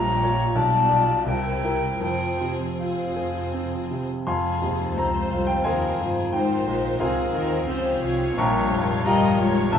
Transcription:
Already playing: A#1 A#2 G3 F4 G4 C#5 A#5
0.23 F4 C#5
0.55 B1 B2 G3 F4 G4 D5 A5
0.89 F4 D5
1.26 C2 C3 C4 E4 G4 A#4 G5
1.64 E4 A#4
2.01 F1 F2 C4 F4 G#4 C5 G5
2.41 C3
2.78 C4 F4 G#4 C5 F5
3.16 G#4
3.54 C4
3.91 C3
4.27 F1 F2 G#3 F4 G#4 C5 F5 G#5 C6
4.62 D#2 C3
4.97 C#2 C4 F4 C5 A#5
5.31 C2 F4
5.47 G5
5.64 D#2 G#4 A#4 C5 F5 G#5
5.98 G1 G2 F4 G#4
6.32 G#1 G#2 F3 F4 A#4 C5 G5
6.65 A#1 A#2 G#3
6.98 C2 C3 C4 G#4 C5 F5
7.33 D#2 D#3 F4 A#4
7.67 C#2 C#3 C4 G4 G#4 C5 F5
8.01 C2 C3 F4 C#5
8.36 A#1 A#2 G3 F4 A#4 G5 A#5 C#6
8.71 G#1 F2 G#2
9.03 G1 G2 G3 F4 A#4 C#5 F5 G5 A#5
9.08 D#5
9.37 G#1 G#2 F4 C#5
9.71 B1 B2 G3 F4 G4 E5 A5

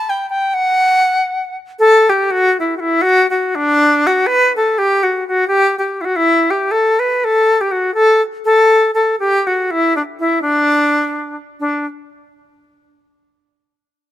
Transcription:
Already playing: A5
0.10 G5
0.30 G5
0.54 F#5
1.79 A4
2.10 G4
2.31 F#4
2.60 E4
2.77 E4 F#4
3.02 F#4
3.30 F#4
3.55 D4
4.07 F#4
4.27 B4
4.56 A4
4.78 G4
5.03 F#4
5.28 F#4
5.48 G4
5.79 G4
6.01 E4 F#4
6.16 E4
6.51 G4
6.71 A4
6.99 B4
7.24 A4
7.61 G4
7.71 F#4
7.94 A4
8.45 A4
8.95 A4
9.20 G4
9.47 F#4
9.71 E4
9.96 D4
10.20 E4
10.42 D4
11.60 D4

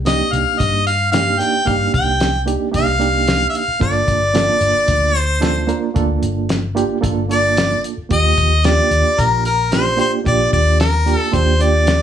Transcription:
Already playing: C2
0.05 A#3 D4 D#4 G4 D#5, snare, closed hi-hat
0.33 C2 F5, closed hi-hat
0.59 G2 D#5, kick, closed hi-hat
0.86 F5, closed hi-hat
1.12 A#3 D4 D#4 G4 F5, snare, closed hi-hat
1.39 A#3 D4 D#4 G4 G5, closed hi-hat
1.65 G2 A#3 D4 D#4 G4 F5, kick, closed hi-hat
1.94 C2 G5, kick, closed hi-hat
2.20 snare, closed hi-hat
2.46 A#3 D4 D#4 G4, closed hi-hat
2.71 C2 A#3 D4 D#4 G4, kick, closed hi-hat
2.76 F5
2.99 A#3 D4 D#4 G4, closed hi-hat
3.28 snare, closed hi-hat
3.50 E5
3.55 F5, closed hi-hat
3.68 muted fingered electric bass stroke
3.80 G1 A#3 D4 F4 A4 D5, kick, closed hi-hat
4.08 G1, kick, closed hi-hat
4.34 A#3 D4 F4 A4, snare, closed hi-hat
4.61 G1, closed hi-hat
4.88 D2, kick, closed hi-hat
5.15 C5, closed hi-hat
5.40 A#3 D4 F4 A4, snare, closed hi-hat
5.67 A#3 D4 F4 A#4, closed hi-hat
5.94 D2 A#3 D4 F4 A4, kick, closed hi-hat
6.22 G1, closed hi-hat
6.49 snare, closed hi-hat
6.75 A#3 D4 F4 G4, closed hi-hat
7.01 G1 A#3 D4 F4 A4, kick, closed hi-hat
7.28 A#3 D4 F4 A4 D5, closed hi-hat
7.57 snare, closed hi-hat
7.84 closed hi-hat
7.97 muted fingered electric bass stroke
8.09 D#2 D3 A#3 F4 G4 D#5, kick, closed hi-hat
8.38 D#2, kick, closed hi-hat
8.64 A#3 D4 F4 G4 D5, snare, closed hi-hat
8.91 D#2, closed hi-hat
9.18 A#1 A#4, kick, closed hi-hat
9.45 A#4, closed hi-hat
9.71 A#3 D4 F4 G4 C5, snare, closed hi-hat
9.97 A#3 D4 F4 G4 C5, closed hi-hat
10.24 A#1 A#3 D4 F4 G4 D5, kick, closed hi-hat
10.53 D#2 D5, kick, closed hi-hat
10.80 A#4, snare, closed hi-hat
11.05 A#3 D4 F4 G4, closed hi-hat
11.17 A4
11.32 D#2 A#3 D4 F4 G4 C5, kick, closed hi-hat
11.59 A#3 D4 F4 G4 D5, closed hi-hat
11.87 snare, closed hi-hat

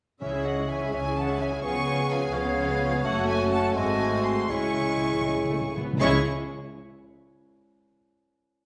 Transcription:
0.21 C#2 C#3 E3 C#4 E4 G#4 C#5 E5
0.32 G#3 E4 G#4 E5
0.45 E3 C#4 E4 C#5 D#5 F#5
0.57 G#3 E4 G#4 E5
0.69 E3 C#4 E4 C#5 E5 G#5
0.81 G#3 E4 G#4 E5
0.93 C#2 C#3 E3 C#4 E4 G#4 C#5 E5 G#5
1.05 G#3 E4 G#4 E5
1.17 E3 C#4 E4 C#5 F#5 A5
1.28 G#3 E4 G#4 E5
1.40 E3 C#4 E4 C#5 E5 G#5
1.51 G#3 E4 G#4 E5
1.63 C#2 C#3 F3 B3 C#4 F4 G#4 B4 C#5 G#5 C#6
1.75 G#3 B3 G#4 C#5
1.85 F3 C#4 F4 B4
1.98 G#3 B3 G#4 C#5
2.09 F3 C#4 F4 B4 F5 G#5
2.21 G#3 B3 G#4 C#5
2.33 C#2 C#3 F3 B3 C#4 F4 G#4 B4 C#5 F5
2.45 G#3 B3 G#4 C#5
2.57 F3 C#4 F4 B4
2.69 G#3 B3 G#4 C#5
2.80 F3 C#4 F4 B4
2.92 G#3 B3 G#4 C#5
3.03 F#1 F#2 A3 C#4 F#4 A4 C#5 F#5
3.28 E5 G#5
3.52 F#5 A5
3.75 G#1 G#2 G#3 A3 C4 F#4 A4 C5 D#5 G#5
4.24 G#5 C6
4.49 C#2 C#3 G#3 C#4 E4 G#4 C#5 G#5 C#6
4.57 C#3
4.66 C#3
4.73 C#3
4.81 C#3
4.89 C#3
4.97 C#3
5.13 C#3
5.21 C#3
5.26 C#3 G#3
5.37 C#3
5.45 C#3
5.51 C#3 A3
5.61 C#3
5.70 C#3
5.77 C#3 B3
5.85 C#3
5.93 C#3
6.00 C#2 C#3 G#3 C#4 E4 G#4 C#5 C#6

